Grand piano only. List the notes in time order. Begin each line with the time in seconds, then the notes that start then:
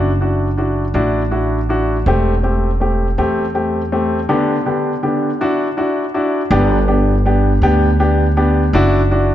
Already playing: E4 F#4
0.21 D4 E4 F#4
0.58 D4 E4 F#4
0.94 D4 E4 F#4
1.31 D4 E4 F#4
1.69 D4 E4 F#4
2.07 A3 C4 G4
2.43 A3 C4 G4
2.80 A3 C4 G4
3.18 A3 C4 G4
3.55 A3 C4 G4
3.92 A3 C4 G4
4.29 D3 B3 D4 G4
4.66 D3 B3 D4 G4
5.03 D3 B3 D4 G4
5.41 D4 E4 F#4
5.77 D4 E4 F#4
6.14 D4 E4 F#4
6.51 B3 D4 G4
6.88 B3 D4 G4
7.26 B3 D4 G4
7.63 B3 D4 G4
8.00 B3 D4 G4
8.37 B3 D4 G4
8.74 D4 E4 F#4
9.11 D4 E4 F#4